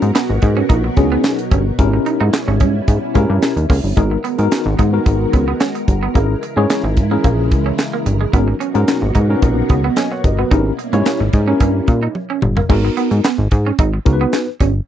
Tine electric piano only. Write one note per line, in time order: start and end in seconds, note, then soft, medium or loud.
0.00 0.12 C#4 medium
0.00 0.12 D#4 medium
0.00 0.12 F#4 medium
0.00 0.12 A#4 medium
0.97 1.36 C#4 medium
0.97 1.04 D4 medium
0.97 1.36 F#4 medium
0.97 1.37 G#4 medium
1.04 1.40 D#4 medium
1.79 2.30 C#4 medium
1.79 2.30 E4 medium
1.79 2.31 G4 medium
1.79 2.31 A#4 medium
3.15 3.54 C#4 medium
3.15 3.54 E4 medium
3.15 3.54 G4 medium
3.15 3.54 A#4 loud
3.97 4.17 B3 medium
3.97 4.17 D#4 medium
3.97 4.17 F#4 medium
3.97 4.17 A#4 medium
4.38 4.64 B3 medium
4.38 4.64 D#4 medium
4.38 4.64 F#4 medium
4.38 4.64 A#4 loud
4.93 5.44 B3 medium
4.93 5.44 D#4 medium
4.93 5.44 F#4 medium
4.93 5.45 A#4 medium
6.14 6.35 C#4 medium
6.14 6.35 E4 medium
6.14 6.35 G#4 medium
6.14 6.35 A#4 medium
6.56 6.82 C#4 medium
6.56 6.82 E4 medium
6.56 6.83 G#4 medium
6.56 6.83 C#5 loud
7.11 7.63 C#4 medium
7.11 7.63 E4 medium
7.11 7.63 G#4 medium
7.11 7.63 A#4 medium
8.33 8.53 C#4 medium
8.33 8.53 D#4 medium
8.33 8.53 F#4 medium
8.33 8.53 A#4 medium
8.74 9.00 C#4 medium
8.74 9.00 D#4 medium
8.74 9.01 F#4 medium
8.74 9.01 A#4 loud
9.29 9.81 C#4 medium
9.29 9.81 D#4 medium
9.29 9.81 F#4 medium
9.29 9.81 A#4 medium
9.97 10.11 D#5 medium
9.97 10.11 G#5 medium
10.12 10.24 C#5 medium
10.12 10.24 F#5 medium
10.25 10.38 A#4 medium
10.25 10.38 D#5 medium
10.39 10.65 F#4 medium
10.39 10.65 B4 medium
10.51 10.71 C#4 medium
10.51 10.71 E4 medium
10.51 10.71 G4 medium
10.51 10.72 A#4 medium
10.93 11.19 C#4 medium
10.93 11.19 E4 medium
10.93 11.19 G4 medium
10.93 11.19 C#5 loud
11.47 11.99 C#4 medium
11.47 11.99 E4 medium
11.47 11.99 G4 medium
11.47 11.99 A#4 medium
12.69 13.21 B3 medium
12.69 13.21 D#4 medium
12.69 13.21 F#4 medium
12.69 13.21 A#4 medium
14.05 14.45 B3 medium
14.05 14.45 D#4 medium
14.05 14.45 F#4 medium
14.05 14.13 A#4 medium
14.13 14.49 B4 loud